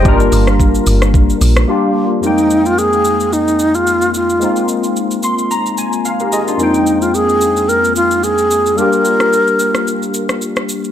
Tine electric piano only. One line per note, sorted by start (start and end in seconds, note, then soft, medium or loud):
0.00 1.64 G3 medium
0.00 1.65 A#3 medium
0.00 0.19 D#5 medium
0.00 0.19 G5 medium
0.05 1.66 D4 medium
0.05 1.66 F4 medium
0.05 1.67 A#4 medium
1.68 2.21 G3 medium
1.68 2.22 A#3 medium
1.68 2.23 D4 medium
1.68 2.24 F4 medium
1.68 2.24 G4 medium
2.21 4.36 F2 medium
2.21 2.30 G3 soft
2.21 4.37 A#3 medium
2.21 4.38 C4 medium
2.25 4.38 G#3 medium
2.25 4.38 D#4 medium
2.25 4.39 G5 medium
4.39 6.54 G#3 medium
4.39 6.55 A#3 medium
4.39 6.56 C4 medium
4.43 6.03 D#4 medium
4.43 6.03 F4 medium
5.24 5.49 C6 medium
5.51 5.76 A#5 medium
5.78 6.03 G#5 medium
6.05 6.31 F5 medium
6.21 6.32 G4 medium
6.21 6.32 A#4 medium
6.33 6.47 F4 medium
6.33 6.47 G#4 medium
6.33 6.58 D#5 medium
6.48 6.74 D4 medium
6.48 6.73 F4 medium
6.57 8.73 F2 medium
6.57 8.73 G#3 medium
6.57 8.74 A#3 medium
6.57 8.74 C4 medium
6.62 8.75 D#4 medium
6.62 8.76 G5 medium
8.75 10.91 G3 medium
8.75 10.91 A#3 medium
8.75 10.92 D4 medium
8.80 10.92 F4 medium
8.80 10.92 G4 medium